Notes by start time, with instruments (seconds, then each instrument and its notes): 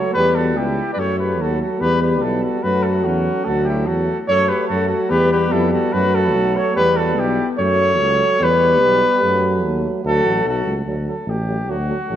Already playing: euphonium F#3, french horn A3, alto saxophone A4, flugelhorn C#5
0.13 tuba E2, euphonium G3, french horn B3, flugelhorn B4
0.18 alto saxophone G4
0.35 alto saxophone F#4, flugelhorn A4
0.57 tuba C#2, alto saxophone E4, flugelhorn G4
0.93 alto saxophone B4, flugelhorn D5
0.97 tuba F#2, euphonium F#3, french horn A3, alto saxophone A4, flugelhorn C#5
1.19 alto saxophone G4, flugelhorn B4
1.39 tuba D#2, alto saxophone F#4, flugelhorn A4
1.61 alto saxophone F#4, flugelhorn A4
1.80 tuba E2, euphonium G3, french horn B3, alto saxophone G4, flugelhorn B4
2.02 alto saxophone G4, flugelhorn B4
2.22 tuba B1, alto saxophone E4, flugelhorn A4
2.43 alto saxophone F#4, flugelhorn A4
2.62 tuba F#2, euphonium F#3, french horn A3, alto saxophone F#4, flugelhorn B4
2.83 alto saxophone F#4, flugelhorn A4
3.04 tuba E2, alto saxophone C#4, flugelhorn F#4
3.45 tuba D2, euphonium F#3, french horn A3, flugelhorn A4
3.49 alto saxophone F#4
3.64 flugelhorn G4
3.69 alto saxophone E4
3.86 tuba E2, alto saxophone F#4, flugelhorn A4
4.27 tuba F#2, euphonium F#3, french horn A3, alto saxophone A4, flugelhorn C#5
4.48 alto saxophone G4, flugelhorn B4
4.68 tuba F#2, alto saxophone F#4, flugelhorn A4
4.87 alto saxophone F#4, flugelhorn A4
5.10 tuba E2, euphonium G3, french horn B3, alto saxophone G4, flugelhorn B4
5.31 alto saxophone G4, flugelhorn B4
5.51 tuba F2, alto saxophone E4, flugelhorn A4
5.72 alto saxophone F#4, flugelhorn A4
5.92 tuba F#2, euphonium F#3, french horn A3, alto saxophone F#4, flugelhorn B4
6.14 alto saxophone F#4, flugelhorn A4
6.35 tuba B1
6.55 alto saxophone A4, flugelhorn C#5
6.74 tuba E2, euphonium G3, french horn B3, alto saxophone G4, flugelhorn B4
6.97 alto saxophone F#4, flugelhorn A4
7.17 tuba B1, alto saxophone E4, flugelhorn G4
7.58 tuba F#2, euphonium F#3, french horn A3, alto saxophone A4, flugelhorn C#5
7.99 tuba C#2
8.39 tuba E2, euphonium G3, french horn B3, alto saxophone G4
8.43 flugelhorn B4
8.82 tuba B1
9.21 tuba F#2, euphonium F#3, french horn A3
9.64 tuba D#2
10.04 tuba D2, euphonium F#3, french horn A3, flugelhorn A4
10.08 alto saxophone F#4
10.25 tuba A1
10.44 tuba B1, flugelhorn A4
10.49 alto saxophone F#4
10.66 tuba C#2
10.86 tuba D2, euphonium F#3, french horn A3
11.05 euphonium F#3, french horn A3, flugelhorn A4
11.26 tuba A1, euphonium F#3, french horn A3, flugelhorn G4
11.48 euphonium F#3, french horn A3
11.68 tuba D2, euphonium F#3, french horn A3, flugelhorn F#4
11.87 euphonium F#3, french horn A3
12.07 tuba A1, euphonium F#3, french horn A3